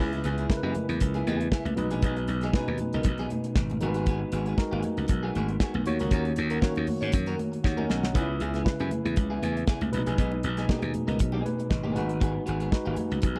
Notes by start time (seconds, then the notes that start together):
0.00 C#2 C#3 G#3 B3 E4 G#4 B4
0.13 muted clean electric guitar stroke, closed hi-hat, muted conga
0.24 C#2 B3 E4 G#4, closed hi-hat
0.38 B3 E4 G#4, closed hi-hat
0.50 C#3 G#3 E4 A#4, muted clean electric guitar stroke, kick, snare, muted conga
0.57 B4
0.63 F#2 B3 E4 G#4
0.75 muted clean electric guitar stroke, closed hi-hat, high conga, low conga
0.89 E2, muted clean electric guitar stroke, closed hi-hat
1.00 C#2, muted clean electric guitar stroke, kick, closed hi-hat, muted conga, low conga
1.14 B3 E4 G#4, closed hi-hat, muted conga
1.27 E2 B3 E4 G#4, closed hi-hat, high conga
1.40 muted clean electric guitar stroke, closed hi-hat
1.52 B3 E4 G#4, kick, snare
1.65 C#2, muted clean electric guitar stroke, closed hi-hat, muted conga, high conga
1.76 B1 B2 G#3 D#4 B4, muted clean electric guitar stroke, closed hi-hat, low conga
1.91 A#1 B3 D#4 G#4, closed hi-hat
2.02 B1 B3 D#4 G#4, kick, closed hi-hat, muted conga
2.16 muted clean electric guitar stroke, closed hi-hat
2.28 B1, muted clean electric guitar stroke, closed hi-hat
2.41 D#4 G#4, snare, closed hi-hat
2.45 B3
2.53 B2 G#3 B3 C#4 D#4 G#4 B4, kick, snare, muted conga
2.60 D#4
2.68 D#2, muted clean electric guitar stroke, muted conga
2.78 muted clean electric guitar stroke, closed hi-hat, high conga, low conga
2.93 C#2 B3 D#4 A#4, closed hi-hat
3.03 B1, muted clean electric guitar stroke, kick, closed hi-hat, low conga
3.18 B3 D#4 G#4, closed hi-hat
3.30 muted clean electric guitar stroke, closed hi-hat, high conga
3.44 muted clean electric guitar stroke, closed hi-hat
3.55 G#1, muted clean electric guitar stroke, kick, snare, muted conga
3.70 muted clean electric guitar stroke, closed hi-hat, high conga
3.80 G#1 G#3 B3 D#4 F#4 G#4 A#4, closed hi-hat, low conga
3.88 B4
3.94 B3 F#4 G#4, closed hi-hat
4.06 B3 F#4 G#4, kick, closed hi-hat
4.21 muted clean electric guitar stroke
4.32 G#1 B3 F#4 G#4, closed hi-hat
4.46 B3 F#4 G#4, closed hi-hat
4.57 G#3 D#4 F#4 A#4, muted clean electric guitar stroke, kick, snare
4.71 G#1 B3 F#4 G#4, muted conga
4.83 muted clean electric guitar stroke, closed hi-hat, high conga, low conga
4.97 C#2, muted clean electric guitar stroke, closed hi-hat
5.08 B1, muted clean electric guitar stroke, kick, closed hi-hat, muted conga, low conga
5.23 B3 F#4 G#4
5.35 G#1 B3 F#4 G#4, closed hi-hat, high conga
5.48 muted clean electric guitar stroke, closed hi-hat
5.60 B3 F#4 G#4, kick, snare, muted conga
5.74 B1, muted clean electric guitar stroke, high conga
5.86 D#2 D#3 A#3 F#4 C#5, muted clean electric guitar stroke, closed hi-hat, low conga
5.99 C#2 C#4 F#4 A#4, closed hi-hat
6.11 D#2 C#4 F#4 A#4, kick, closed hi-hat, muted conga
6.25 muted clean electric guitar stroke, closed hi-hat, muted conga
6.36 D#2, muted clean electric guitar stroke, closed hi-hat
6.50 C#4 F#4 A#4, closed hi-hat
6.61 D#3 A#3 C#4 F#4 A#4 C#5, kick, snare
6.75 D#2, muted clean electric guitar stroke, closed hi-hat, muted conga
6.87 muted clean electric guitar stroke, open hi-hat, high conga, low conga
7.01 G#2 C#4 F#4 C#5, closed hi-hat
7.12 F#2, muted clean electric guitar stroke, kick, closed hi-hat, low conga
7.26 C#4 F#4 A#4, closed hi-hat, muted conga
7.39 muted clean electric guitar stroke, closed hi-hat, high conga
7.52 muted clean electric guitar stroke, closed hi-hat
7.64 D#2 C#5 F#5, muted clean electric guitar stroke, kick, snare
7.77 C#4 F#4 A#4 D#5 G#5, high conga
7.90 B1 C#4 F#4 A#4 D#5 A#5, snare, low conga
8.03 C#5 F#5, muted clean electric guitar stroke, snare
8.14 C#2 C#3 G#3 B3 D#4 E4 G#4 B4, kick, closed hi-hat, muted conga
8.21 E4
8.29 muted clean electric guitar stroke
8.40 C#2 B3 E4 G#4, closed hi-hat
8.54 B3 E4 G#4, snare, closed hi-hat
8.64 C#3 G#3 E4 B4, muted clean electric guitar stroke, kick, snare, muted conga
8.79 F#2 B3 E4 G#4, closed hi-hat
8.91 muted clean electric guitar stroke, closed hi-hat, high conga, low conga
9.05 E2, muted clean electric guitar stroke, closed hi-hat
9.16 C#2, muted clean electric guitar stroke, kick, closed hi-hat, low conga
9.30 B3 E4 G#4
9.42 E2 B3 E4 G#4, closed hi-hat, high conga
9.57 muted clean electric guitar stroke, closed hi-hat
9.67 B3 E4 G#4, kick, snare, muted conga
9.81 C#2, muted clean electric guitar stroke, closed hi-hat, muted conga, high conga
9.91 B1 B2 G#3 D4 B4, muted clean electric guitar stroke, closed hi-hat, low conga
9.98 D#4
10.06 A#1 B3 D#4 G#4, closed hi-hat
10.18 B1 B3 D#4 G#4, kick, closed hi-hat
10.32 muted clean electric guitar stroke, muted conga
10.43 B1, muted clean electric guitar stroke, closed hi-hat
10.57 B3 D#4 G#4, snare, closed hi-hat
10.68 B2 G#3 B3 D#4 G#4, kick, snare, muted conga
10.82 D#2, muted clean electric guitar stroke, closed hi-hat, muted conga
10.94 muted clean electric guitar stroke, closed hi-hat, high conga, low conga
11.07 C#2 B3 D#4 A#4, closed hi-hat
11.19 B1, muted clean electric guitar stroke, kick, closed hi-hat, muted conga, low conga
11.32 B3 D#4 G#4, muted conga
11.45 B4, muted clean electric guitar stroke, closed hi-hat, high conga
11.59 muted clean electric guitar stroke, closed hi-hat
11.70 G#1 D#5, muted clean electric guitar stroke, kick, snare, muted conga
11.84 B3 D#4 G#4, high conga
11.94 G#1 G#3 B3 D#4 F#4 G#4 B4 F#5, closed hi-hat, low conga
12.09 muted clean electric guitar stroke, closed hi-hat
12.20 B3 F#4 G#4, kick, closed hi-hat, muted conga
12.35 muted clean electric guitar stroke
12.46 G#1 B3 F#4 G#4, closed hi-hat
12.60 B3 F#4 G#4, closed hi-hat
12.71 G#3 D#4 F#4 B4, muted clean electric guitar stroke, kick, snare
12.85 G#1 B3 F#4 G#4, muted conga
12.96 muted clean electric guitar stroke, closed hi-hat, high conga, low conga
13.11 C#2, muted clean electric guitar stroke, closed hi-hat
13.22 B1, muted clean electric guitar stroke, kick, closed hi-hat, muted conga, low conga
13.36 G#4, muted conga